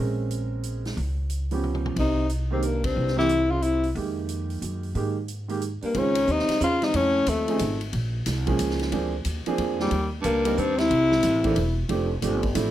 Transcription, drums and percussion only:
0.31 closed hi-hat
0.63 closed hi-hat
0.85 snare, open hi-hat
0.97 kick, open hi-hat
1.30 closed hi-hat
1.51 open hi-hat
1.64 mid tom
1.75 mid tom
1.86 mid tom
1.96 kick, ride
2.29 closed hi-hat
2.62 closed hi-hat
2.84 kick, ride
3.07 snare
3.19 snare
3.29 closed hi-hat
3.62 closed hi-hat
3.83 open hi-hat
3.96 kick, open hi-hat
4.29 closed hi-hat
4.50 open hi-hat
4.62 closed hi-hat
4.83 open hi-hat
4.95 kick, open hi-hat
5.28 closed hi-hat
5.49 open hi-hat
5.62 closed hi-hat
5.82 open hi-hat
5.94 kick, ride
6.15 ride
6.27 kick, hi-hat pedal
6.39 snare
6.49 snare, ride
6.61 kick, hi-hat pedal
6.82 snare, ride
6.94 kick, ride
7.26 kick, hi-hat pedal, ride
7.48 ride
7.59 kick, hi-hat pedal, ride
7.81 ride
7.93 kick, ride
8.26 kick, snare, hi-hat pedal, ride
8.47 kick, ride
8.59 kick, hi-hat pedal, ride
8.70 snare
8.79 snare, ride
8.92 kick, ride
9.25 kick, hi-hat pedal, ride
9.46 ride
9.58 kick, ride
9.79 snare
9.91 kick, ride
10.24 kick, hi-hat pedal, ride
10.45 ride
10.57 kick, hi-hat pedal
10.78 snare, ride
10.91 kick, ride
11.12 snare
11.23 kick, snare, hi-hat pedal, ride
11.44 kick, ride
11.56 ride
11.89 kick, ride
12.22 kick, hi-hat pedal, ride
12.43 kick, ride
12.55 kick, hi-hat pedal, ride

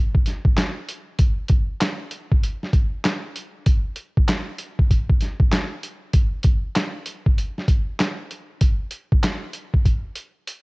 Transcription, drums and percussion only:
0.15 kick
0.26 snare, closed hi-hat
0.45 kick
0.57 snare, clap, closed hi-hat
0.89 closed hi-hat
1.19 kick, closed hi-hat
1.48 kick, closed hi-hat
1.81 snare, clap, closed hi-hat
2.11 closed hi-hat
2.32 kick
2.43 closed hi-hat
2.63 snare
2.73 kick, closed hi-hat
3.05 snare, clap, closed hi-hat
3.36 closed hi-hat
3.66 kick, closed hi-hat
3.96 closed hi-hat
4.17 kick
4.28 snare, clap, closed hi-hat
4.58 closed hi-hat
4.79 kick
4.91 kick, closed hi-hat
5.09 kick
5.21 snare, closed hi-hat
5.40 kick
5.52 snare, clap, closed hi-hat
5.83 closed hi-hat
6.13 kick, closed hi-hat
6.43 kick, closed hi-hat
6.76 snare, clap, closed hi-hat
7.06 closed hi-hat
7.26 kick
7.38 closed hi-hat
7.58 snare
7.68 kick, closed hi-hat
7.99 snare, clap, closed hi-hat
8.31 closed hi-hat
8.61 kick, closed hi-hat
8.91 closed hi-hat
9.12 kick
9.23 snare, clap, closed hi-hat
9.53 closed hi-hat
9.74 kick
9.85 kick, closed hi-hat
10.15 closed hi-hat
10.47 closed hi-hat

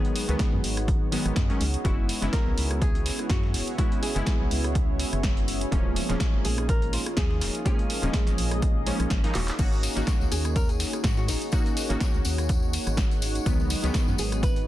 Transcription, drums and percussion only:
0.05 closed hi-hat
0.16 closed hi-hat, open hi-hat
0.29 snare, closed hi-hat
0.39 kick, snare, closed hi-hat
0.64 closed hi-hat, open hi-hat
0.77 cross-stick, closed hi-hat
0.88 kick, closed hi-hat
1.12 closed hi-hat, open hi-hat
1.26 cross-stick, closed hi-hat
1.36 kick, snare, closed hi-hat
1.50 closed hi-hat
1.61 closed hi-hat, open hi-hat
1.74 closed hi-hat
1.85 kick, closed hi-hat
2.09 closed hi-hat, open hi-hat
2.22 snare, closed hi-hat
2.33 kick, snare, closed hi-hat
2.58 closed hi-hat, open hi-hat
2.71 cross-stick, closed hi-hat
2.82 kick, closed hi-hat
2.95 closed hi-hat
3.06 snare, closed hi-hat, open hi-hat
3.19 cross-stick, closed hi-hat
3.29 kick, snare, closed hi-hat
3.43 snare
3.54 open hi-hat
3.67 closed hi-hat
3.78 kick, closed hi-hat
3.92 closed hi-hat
4.03 closed hi-hat, open hi-hat
4.16 snare, closed hi-hat
4.26 kick, snare, closed hi-hat
4.51 closed hi-hat, open hi-hat
4.64 cross-stick, closed hi-hat
4.75 kick, closed hi-hat
4.99 closed hi-hat, open hi-hat
5.13 cross-stick, closed hi-hat
5.23 kick, snare, closed hi-hat
5.37 closed hi-hat
5.48 closed hi-hat, open hi-hat
5.61 closed hi-hat
5.72 kick, closed hi-hat
5.96 closed hi-hat, open hi-hat
6.10 snare, closed hi-hat
6.20 kick, snare, closed hi-hat
6.45 closed hi-hat, open hi-hat
6.58 cross-stick, closed hi-hat
6.69 kick, closed hi-hat
6.82 closed hi-hat
6.93 snare, closed hi-hat, open hi-hat
7.06 cross-stick, closed hi-hat
7.17 kick, snare, closed hi-hat
7.31 snare
7.41 snare, closed hi-hat, open hi-hat
7.55 closed hi-hat
7.66 kick, closed hi-hat
7.79 closed hi-hat
7.90 closed hi-hat, open hi-hat
8.03 snare, closed hi-hat
8.13 kick, snare, closed hi-hat
8.27 snare, closed hi-hat
8.38 closed hi-hat, open hi-hat
8.51 cross-stick, closed hi-hat
8.62 kick, closed hi-hat
8.87 closed hi-hat, open hi-hat
9.00 cross-stick, closed hi-hat
9.10 kick, snare, closed hi-hat
9.24 snare, closed hi-hat
9.35 snare, clap, closed hi-hat, open hi-hat
9.48 snare, clap, closed hi-hat
9.59 kick, closed hi-hat, tambourine, crash
9.72 tambourine
9.83 closed hi-hat, open hi-hat, tambourine
9.97 snare, closed hi-hat, tambourine
10.07 kick, snare, closed hi-hat, tambourine
10.21 tambourine
10.32 closed hi-hat, open hi-hat, tambourine
10.45 cross-stick, closed hi-hat, tambourine
10.56 kick, closed hi-hat, tambourine
10.69 closed hi-hat, tambourine
10.80 snare, closed hi-hat, open hi-hat, tambourine
10.93 cross-stick, closed hi-hat, tambourine
11.04 kick, snare, closed hi-hat, tambourine
11.17 snare, tambourine
11.28 open hi-hat, tambourine
11.42 closed hi-hat, tambourine
11.52 kick, closed hi-hat, tambourine
11.66 closed hi-hat, tambourine
11.77 closed hi-hat, open hi-hat, tambourine
11.90 snare, closed hi-hat, tambourine
12.00 kick, snare, closed hi-hat, tambourine
12.14 tambourine
12.25 closed hi-hat, open hi-hat, tambourine
12.38 cross-stick, closed hi-hat, tambourine
12.49 kick, closed hi-hat, tambourine
12.62 tambourine
12.73 closed hi-hat, open hi-hat, tambourine
12.87 cross-stick, closed hi-hat, tambourine
12.97 kick, snare, closed hi-hat, tambourine
13.11 closed hi-hat, tambourine
13.22 closed hi-hat, open hi-hat, tambourine
13.35 closed hi-hat, tambourine
13.46 kick, closed hi-hat, tambourine
13.60 tambourine
13.70 closed hi-hat, open hi-hat, tambourine
13.84 snare, closed hi-hat, tambourine
13.94 kick, snare, closed hi-hat, tambourine
14.08 tambourine
14.18 closed hi-hat, open hi-hat, tambourine
14.32 cross-stick, closed hi-hat, tambourine
14.43 kick, closed hi-hat, tambourine
14.56 closed hi-hat, tambourine

